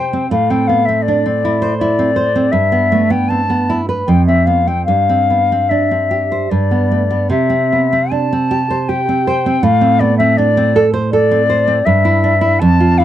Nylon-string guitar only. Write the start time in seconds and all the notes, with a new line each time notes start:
Already playing: C3 C5
0.13 C4
0.31 A2
0.50 C4
0.69 B3
0.89 C4
1.08 D4
1.26 C4
1.45 E4
1.62 C5
1.81 E4
1.99 C4
2.16 C5
2.36 C4
2.53 G2
2.72 B3
2.92 A3
3.10 B3
3.30 C4
3.50 B3
3.70 E4
3.89 B4
4.08 F2
4.28 C4
4.47 B3
4.68 C4
4.88 G2
5.09 C4
5.30 B3
5.52 C4
5.71 D4
5.91 C4
6.11 G4
6.32 C5
6.51 G2
6.71 B3
6.91 A3
7.10 B3
7.30 C3
7.50 C4
7.72 B3
7.93 C4
8.11 D4
8.33 C4
8.51 G4
8.70 C5
8.89 G4
9.09 C4
9.27 C5
9.46 C4
9.63 A2
9.81 C4
10.01 B3
10.20 C4
10.38 D4
10.57 C4
10.76 A4
10.94 C5
11.13 A4
11.31 C4
11.50 C5
11.68 C4
11.86 G2
12.05 E4
12.24 D4
12.41 E4
12.61 F2
12.80 F4
13.00 E4